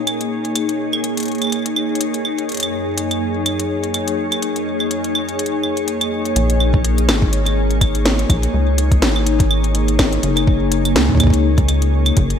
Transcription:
0.00 1.59 A#3 medium
0.00 6.35 A#3 medium
0.00 1.03 C#4 medium
0.00 12.39 D#4 medium
0.00 12.39 G#4 loud
0.00 12.39 C#5 medium
0.07 closed hi-hat medium
0.07 claves medium
0.21 closed hi-hat soft
0.45 closed hi-hat soft
0.56 closed hi-hat medium
0.56 claves soft
0.69 closed hi-hat soft
0.93 claves medium
1.04 closed hi-hat medium
1.17 closed hi-hat soft
1.20 closed hi-hat soft
1.23 closed hi-hat soft
1.26 closed hi-hat soft
1.28 closed hi-hat soft
1.32 closed hi-hat soft
1.35 closed hi-hat soft
1.38 closed hi-hat soft
1.42 closed hi-hat soft
1.42 claves soft
1.44 claves soft
1.47 claves soft
1.50 closed hi-hat medium
1.50 claves soft
1.52 claves soft
1.56 claves soft
1.59 claves soft
1.62 closed hi-hat medium
1.62 claves soft
1.76 claves medium
1.95 closed hi-hat soft
2.01 closed hi-hat medium
2.14 closed hi-hat medium
2.25 claves medium
2.38 closed hi-hat soft
2.49 6.36 F#2 medium
2.49 closed hi-hat soft
2.52 closed hi-hat soft
2.55 closed hi-hat soft
2.57 closed hi-hat medium
2.60 closed hi-hat medium
2.63 closed hi-hat soft
2.63 claves medium
2.98 closed hi-hat medium
3.11 closed hi-hat soft
3.11 claves soft
3.46 closed hi-hat medium
3.46 claves medium
3.60 closed hi-hat medium
3.84 closed hi-hat soft
3.94 closed hi-hat medium
3.94 claves soft
4.08 closed hi-hat medium
4.32 closed hi-hat soft
4.32 claves medium
4.42 closed hi-hat medium
4.56 closed hi-hat soft
4.80 claves soft
4.91 closed hi-hat medium
5.04 closed hi-hat soft
5.15 claves medium
5.29 closed hi-hat soft
5.39 closed hi-hat medium
5.46 closed hi-hat soft
5.63 claves soft
5.77 closed hi-hat soft
5.88 closed hi-hat medium
6.01 closed hi-hat soft
6.01 claves medium
6.25 closed hi-hat soft
6.36 7.10 A#1 loud
6.36 12.39 A#3 medium
6.36 closed hi-hat medium
6.50 closed hi-hat medium
6.60 claves medium
6.74 kick loud
6.85 closed hi-hat medium
6.98 closed hi-hat medium
7.09 8.25 G#1 loud
7.09 snare loud
7.09 claves medium
7.22 kick loud
7.33 closed hi-hat medium
7.46 closed hi-hat medium
7.46 claves medium
7.71 closed hi-hat soft
7.81 kick loud
7.81 closed hi-hat medium
7.81 claves medium
7.95 closed hi-hat medium
8.06 snare loud
8.19 closed hi-hat soft
8.30 8.48 A#1 loud
8.30 kick loud
8.30 closed hi-hat medium
8.30 claves medium
8.43 closed hi-hat medium
8.54 9.04 C#2 medium
8.78 closed hi-hat medium
8.92 kick loud
8.92 closed hi-hat medium
9.02 10.18 G#1 medium
9.02 snare loud
9.16 claves medium
9.27 closed hi-hat medium
9.40 kick loud
9.40 closed hi-hat medium
9.51 claves medium
9.64 closed hi-hat soft
9.75 closed hi-hat medium
9.88 closed hi-hat medium
9.99 kick loud
9.99 snare loud
9.99 claves medium
10.13 closed hi-hat soft
10.23 10.98 F#1 loud
10.23 closed hi-hat medium
10.37 closed hi-hat medium
10.37 claves medium
10.47 kick loud
10.72 closed hi-hat medium
10.85 closed hi-hat medium
10.85 claves soft
10.96 12.12 C#2 medium
10.96 snare loud
11.09 kick soft
11.12 kick medium
11.15 kick medium
11.17 kick medium
11.17 closed hi-hat medium
11.17 claves medium
11.20 kick medium
11.23 kick medium
11.27 kick medium
11.30 kick loud
11.30 closed hi-hat medium
11.58 kick loud
11.58 closed hi-hat soft
11.69 closed hi-hat medium
11.69 claves medium
11.82 closed hi-hat medium
12.06 closed hi-hat soft
12.06 claves medium
12.17 12.35 F#1 loud
12.17 kick loud
12.17 closed hi-hat medium
12.30 closed hi-hat medium

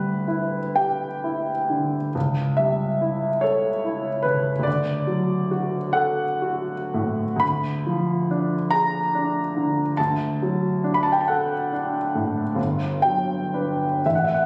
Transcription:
0.00 2.08 D2 soft
0.00 0.59 G3 soft
0.00 0.77 B4 medium
0.28 1.07 E4 soft
0.76 1.52 G4 soft
0.76 2.14 G5 medium
1.24 1.97 E4 soft
1.70 2.15 D3 soft
2.15 4.63 C#2 soft
2.57 3.27 G3 soft
2.57 3.43 E5 medium
3.01 3.68 E4 soft
3.41 4.09 A4 soft
3.41 4.24 C#5 medium
3.85 4.50 E4 soft
4.23 4.67 C#3 soft
4.23 4.65 B4 medium
4.59 7.34 D2 soft
4.63 5.93 D5 medium
5.07 5.76 F#3 soft
5.51 6.23 F#4 soft
5.93 6.72 A4 soft
5.93 7.41 F#5 medium
6.42 7.23 F#4 soft
6.94 7.43 A2 soft
7.36 9.91 D2 medium
7.36 8.71 B5 medium
7.86 8.55 F3 soft
8.31 8.97 D4 soft
8.71 9.39 G#4 soft
8.71 9.98 A#5 medium
9.15 9.82 D4 soft
9.56 9.99 D3 soft
9.97 12.54 D2 soft
9.97 10.92 A5 medium
10.43 11.10 F#3 soft
10.84 11.53 D4 soft
10.94 11.02 B5 medium
11.03 11.11 A5 medium
11.12 11.20 G5 medium
11.21 11.28 A5 medium
11.28 11.98 A4 soft
11.28 11.71 F#5 medium
11.73 12.41 D4 soft
12.15 12.59 A2 soft
12.55 13.99 G1 soft
13.02 13.84 F#3 soft
13.02 14.04 G5 medium
13.54 14.01 D4 soft
13.54 14.01 B4 soft
14.06 14.46 A1 soft
14.06 14.14 E5 medium
14.15 14.24 F#5 soft
14.25 14.33 E5 medium
14.34 14.43 F#5 soft

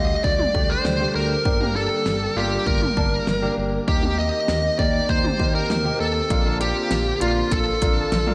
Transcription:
0.00 0.15 D2 loud
0.00 0.39 D3 medium
0.00 3.84 D3 medium
0.00 1.43 G3 medium
0.00 0.39 A3 medium
0.00 0.39 G4 medium
0.00 3.84 G4 medium
0.00 0.24 D#5 medium
0.24 0.45 D2 loud
0.24 0.71 D5 loud
0.24 kick medium
0.39 mid tom medium
0.55 0.76 D2 loud
0.55 0.88 A3 medium
0.55 0.88 D4 medium
0.55 0.88 G4 medium
0.55 kick medium
0.70 1.15 C5 medium
0.85 1.06 D2 loud
0.85 snare loud
0.85 mid tom medium
1.00 1.33 A3 medium
1.00 1.33 D4 medium
1.00 1.33 G4 medium
1.15 1.36 D2 loud
1.15 1.76 A#4 medium
1.45 1.88 G1 loud
1.45 3.86 G3 medium
1.45 6.26 A#3 medium
1.45 1.57 A#3 medium
1.45 1.57 D4 medium
1.45 1.57 G4 medium
1.45 kick loud
1.61 2.17 A#3 medium
1.61 2.16 D4 medium
1.61 2.17 G4 medium
1.61 mid tom medium
1.76 2.38 A4 medium
2.06 2.27 G1 loud
2.06 snare loud
2.36 2.58 G1 loud
2.36 2.81 A#3 medium
2.36 2.81 D4 medium
2.36 2.81 F4 medium
2.36 2.65 G4 medium
2.67 2.88 G1 loud
2.67 3.54 A#4 medium
2.67 kick medium
2.82 mid tom medium
2.97 3.18 G1 loud
2.97 3.31 A#3 medium
2.97 3.31 D4 medium
2.97 3.31 A5 medium
2.97 kick medium
3.27 3.48 G1 loud
3.27 snare loud
3.27 mid tom medium
3.42 3.76 A#3 medium
3.42 3.76 D4 medium
3.42 3.76 G4 medium
3.58 3.79 G1 medium
3.88 4.30 D#2 loud
3.88 3.99 A#3 medium
3.88 3.99 D#4 medium
3.88 3.99 G4 medium
3.88 4.16 G4 loud
3.88 kick loud
4.03 4.59 A#3 medium
4.03 4.59 D#4 medium
4.03 4.59 G4 medium
4.03 mid tom medium
4.18 4.78 D#5 loud
4.48 4.70 D#2 loud
4.48 snare loud
4.79 5.00 D#2 loud
4.79 5.24 A#3 medium
4.79 5.24 D#4 medium
4.79 5.24 G4 medium
4.79 5.10 D5 loud
4.79 kick medium
5.09 5.30 D#2 loud
5.09 5.55 C5 loud
5.09 kick medium
5.24 mid tom medium
5.40 5.61 D#2 loud
5.40 5.73 A#3 medium
5.40 5.73 D#4 medium
5.40 5.73 G4 medium
5.40 kick medium
5.55 6.00 A#4 medium
5.70 5.91 D#2 loud
5.70 snare loud
5.70 mid tom medium
5.85 6.18 A#3 medium
5.85 6.18 D#4 medium
5.85 6.18 G4 medium
6.00 6.21 D#2 loud
6.00 6.57 A4 medium
6.30 6.73 A#1 loud
6.30 8.34 D3 medium
6.30 6.42 A#3 medium
6.30 8.34 A#3 medium
6.30 6.42 D4 medium
6.30 6.42 F4 medium
6.30 8.34 F4 medium
6.30 kick loud
6.30 closed hi-hat medium
6.46 7.01 A#3 medium
6.46 7.01 D4 medium
6.46 7.01 F4 medium
6.61 7.21 G4 medium
6.61 closed hi-hat medium
6.91 7.12 A#1 loud
6.91 snare loud
6.91 closed hi-hat medium
7.21 7.43 A#1 loud
7.21 7.66 A#3 medium
7.21 7.66 D4 medium
7.21 7.66 F4 medium
7.21 7.53 F4 medium
7.21 closed hi-hat medium
7.51 7.73 A#1 loud
7.51 8.34 A4 medium
7.51 kick medium
7.51 closed hi-hat medium
7.82 8.03 A#1 loud
7.82 8.15 A#3 medium
7.82 8.15 D4 medium
7.82 8.15 F4 medium
7.82 kick medium
7.82 closed hi-hat medium
8.12 8.33 A#1 loud
8.12 snare loud
8.12 closed hi-hat medium
8.12 mid tom medium
8.27 8.34 A#3 medium
8.27 8.34 D4 medium
8.27 8.34 F4 medium
8.27 mid tom medium

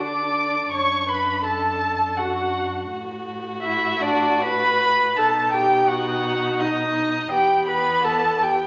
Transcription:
0.00 0.69 D3 soft
0.00 2.87 D4 medium
0.00 0.73 D5 medium
0.00 0.71 D6 medium
0.71 2.87 F#2 soft
0.71 1.08 C#5 medium
0.71 1.10 C#6 medium
1.09 1.44 B4 medium
1.09 1.45 B5 medium
1.43 2.20 A4 medium
1.43 2.19 A5 medium
2.17 2.91 F#4 medium
2.17 2.90 F#5 medium
2.90 5.19 A2 medium
2.90 5.13 F#4 medium
3.62 3.99 E4 medium
3.62 4.03 E5 medium
4.02 4.42 D4 medium
4.02 4.44 D5 medium
4.42 5.19 B4 loud
4.42 5.18 B5 loud
5.16 7.32 B2 medium
5.16 7.28 D#4 medium
5.16 5.54 A4 medium
5.16 5.52 A5 medium
5.53 5.90 G4 medium
5.53 5.90 G5 medium
5.88 6.62 F#4 medium
5.88 6.61 F#5 medium
6.60 7.31 D#4 medium
6.60 7.31 D#5 medium
7.32 8.67 E2 medium
7.32 8.67 B3 medium
7.32 7.69 G4 medium
7.32 7.67 G5 medium
7.68 8.05 B4 medium
7.68 8.06 B5 medium
8.04 8.44 A4 medium
8.04 8.44 A5 medium
8.42 8.67 G4 medium
8.42 8.67 G5 medium

